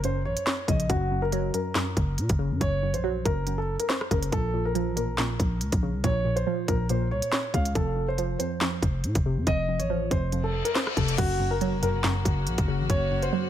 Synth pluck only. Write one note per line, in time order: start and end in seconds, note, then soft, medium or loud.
0.00 0.68 F#3 medium
0.04 0.88 F#2 medium
0.68 1.75 C#3 medium
0.89 1.10 F#2 loud
1.11 1.53 F#2 medium
1.33 2.40 F#3 loud
1.54 1.74 F#2 medium
1.75 2.59 F#2 medium
2.39 3.47 C#3 medium
2.61 2.82 F#2 medium
2.83 3.25 F#2 medium
3.04 4.11 F#3 loud
3.26 3.46 F#2 medium
3.47 4.33 F#2 medium
4.11 4.33 C#3 medium
4.32 4.53 A#2 medium
4.54 4.95 A#2 medium
4.75 5.82 F3 medium
4.96 5.17 A#2 medium
5.18 6.03 A#2 medium
5.83 6.90 C#3 medium
6.04 6.24 A#2 loud
6.25 6.67 A#2 medium
6.47 7.54 F3 medium
6.68 6.89 A#2 medium
6.90 7.76 A#2 medium
7.54 7.75 C#3 medium
7.76 7.95 F2 medium
7.96 8.39 F2 medium
8.18 9.25 F3 medium
8.40 8.60 F2 medium
8.61 9.46 F2 medium
9.26 10.33 C3 medium
9.47 9.67 F2 medium
9.69 10.10 F2 medium
9.90 10.97 F3 medium
10.11 10.31 F2 medium
10.33 11.18 F2 medium
10.97 11.19 C3 medium
11.18 11.39 F#2 medium
11.40 11.81 F#2 medium
11.61 12.68 F#3 loud
11.82 12.03 F#2 medium
12.04 12.88 F#2 medium
12.68 13.50 C#3 medium
12.90 13.10 F#2 loud
13.11 13.50 F#2 medium
13.33 13.50 F#3 loud